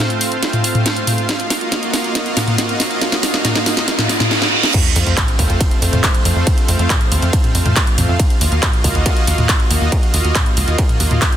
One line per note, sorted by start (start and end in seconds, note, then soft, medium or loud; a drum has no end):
0.00 1.25 A3 medium
0.00 1.25 C4 medium
0.00 4.70 F4 medium
0.00 1.25 C5 medium
0.00 4.70 F5 medium
0.00 riser medium
0.10 closed hi-hat soft
0.21 open hi-hat medium
0.32 closed hi-hat soft
0.43 snare medium
0.43 closed hi-hat medium
0.53 closed hi-hat soft
0.53 mid tom medium
0.64 open hi-hat loud
0.75 closed hi-hat soft
0.75 mid tom medium
0.86 snare medium
0.86 closed hi-hat loud
0.97 closed hi-hat soft
1.07 open hi-hat loud
1.07 mid tom medium
1.18 closed hi-hat soft
1.29 4.71 A#3 medium
1.29 4.71 F#4 medium
1.29 4.71 D#5 medium
1.29 snare medium
1.29 closed hi-hat medium
1.40 closed hi-hat soft
1.50 snare medium
1.50 open hi-hat loud
1.61 closed hi-hat soft
1.72 snare medium
1.72 closed hi-hat medium
1.83 closed hi-hat soft
1.94 snare medium
1.94 open hi-hat loud
2.04 closed hi-hat soft
2.15 snare medium
2.15 closed hi-hat medium
2.26 closed hi-hat soft
2.37 snare medium
2.37 open hi-hat loud
2.37 mid tom medium
2.48 closed hi-hat soft
2.48 mid tom medium
2.58 snare medium
2.58 closed hi-hat medium
2.69 closed hi-hat soft
2.80 snare medium
2.80 open hi-hat loud
2.91 closed hi-hat soft
3.01 snare medium
3.01 closed hi-hat medium
3.12 snare medium
3.12 closed hi-hat soft
3.23 snare loud
3.23 open hi-hat loud
3.34 snare medium
3.34 closed hi-hat soft
3.45 snare medium
3.45 closed hi-hat medium
3.45 mid tom medium
3.55 snare medium
3.55 closed hi-hat soft
3.66 snare loud
3.66 open hi-hat loud
3.77 snare medium
3.77 closed hi-hat soft
3.88 snare loud
3.88 closed hi-hat medium
3.88 reverse cymbal medium
3.99 snare medium
3.99 closed hi-hat soft
3.99 mid tom medium
4.09 snare loud
4.09 open hi-hat loud
4.20 snare medium
4.20 closed hi-hat soft
4.20 mid tom medium
4.31 snare medium
4.42 snare medium
4.63 snare medium
4.74 8.16 A3 medium
4.74 8.16 C4 medium
4.74 11.37 F4 medium
4.74 8.16 C5 medium
4.74 11.37 F5 medium
4.74 kick loud
4.74 closed hi-hat medium
4.74 ride medium
4.74 crash loud
4.74 sub drop medium
4.85 closed hi-hat soft
4.96 5.04 F2 loud
4.96 open hi-hat loud
5.07 5.15 F2 medium
5.07 closed hi-hat soft
5.17 kick loud
5.17 clap loud
5.17 closed hi-hat medium
5.17 mid tom medium
5.17 ride medium
5.28 closed hi-hat soft
5.39 5.47 D#2 medium
5.39 kick medium
5.39 open hi-hat medium
5.50 5.58 F2 medium
5.50 closed hi-hat soft
5.61 kick loud
5.61 closed hi-hat medium
5.61 ride medium
5.71 closed hi-hat soft
5.82 5.90 F2 medium
5.82 open hi-hat loud
5.93 6.01 F2 medium
5.93 closed hi-hat soft
5.93 mid tom medium
6.04 kick loud
6.04 clap loud
6.04 closed hi-hat loud
6.04 ride medium
6.15 closed hi-hat soft
6.25 6.34 F2 loud
6.25 open hi-hat medium
6.36 6.44 F2 medium
6.47 kick loud
6.47 closed hi-hat medium
6.47 ride medium
6.58 closed hi-hat soft
6.68 6.77 F2 loud
6.68 open hi-hat loud
6.79 6.88 F2 medium
6.79 closed hi-hat soft
6.90 kick loud
6.90 clap loud
6.90 closed hi-hat medium
6.90 mid tom medium
6.90 ride medium
7.01 closed hi-hat soft
7.12 7.20 D#2 loud
7.12 open hi-hat loud
7.22 7.31 F2 medium
7.22 closed hi-hat soft
7.33 kick loud
7.33 closed hi-hat medium
7.33 ride medium
7.44 closed hi-hat soft
7.44 mid tom medium
7.55 7.63 F2 loud
7.55 open hi-hat loud
7.66 7.74 F2 medium
7.66 closed hi-hat soft
7.66 mid tom medium
7.76 kick loud
7.76 clap loud
7.76 closed hi-hat loud
7.76 ride medium
7.87 closed hi-hat soft
7.98 8.06 F2 medium
7.98 open hi-hat loud
7.98 mid tom medium
8.09 8.17 F2 medium
8.20 11.37 A#3 medium
8.20 11.37 F#4 medium
8.20 11.37 D#5 medium
8.20 kick loud
8.20 closed hi-hat medium
8.20 ride medium
8.30 closed hi-hat soft
8.41 8.49 D#2 medium
8.41 open hi-hat loud
8.52 8.60 D#2 medium
8.52 closed hi-hat soft
8.63 kick loud
8.63 clap loud
8.63 closed hi-hat medium
8.63 mid tom medium
8.63 ride medium
8.73 closed hi-hat soft
8.84 8.93 C#2 loud
8.84 kick medium
8.84 open hi-hat loud
8.95 9.03 D#2 medium
8.95 closed hi-hat soft
9.06 kick loud
9.06 closed hi-hat medium
9.06 ride medium
9.17 closed hi-hat soft
9.27 9.36 D#2 loud
9.27 open hi-hat loud
9.38 9.47 D#2 medium
9.38 closed hi-hat soft
9.38 mid tom medium
9.49 kick loud
9.49 clap loud
9.49 closed hi-hat loud
9.49 ride medium
9.60 closed hi-hat soft
9.71 9.79 D#2 loud
9.71 open hi-hat loud
9.81 9.90 D#2 medium
9.92 kick loud
9.92 closed hi-hat medium
9.92 ride medium
10.03 closed hi-hat soft
10.14 10.22 D#2 medium
10.14 open hi-hat loud
10.25 10.33 D#2 medium
10.25 closed hi-hat soft
10.35 kick loud
10.35 clap loud
10.35 closed hi-hat medium
10.35 mid tom medium
10.35 ride medium
10.46 closed hi-hat soft
10.57 10.65 C#2 loud
10.57 open hi-hat loud
10.68 10.76 D#2 medium
10.68 closed hi-hat soft
10.78 kick loud
10.78 closed hi-hat medium
10.78 ride medium
10.89 closed hi-hat soft
10.89 mid tom medium
11.00 11.08 D#2 medium
11.00 open hi-hat loud
11.11 11.19 D#2 medium
11.11 closed hi-hat soft
11.11 mid tom medium
11.22 kick loud
11.22 clap loud
11.22 closed hi-hat loud
11.22 ride medium
11.32 closed hi-hat soft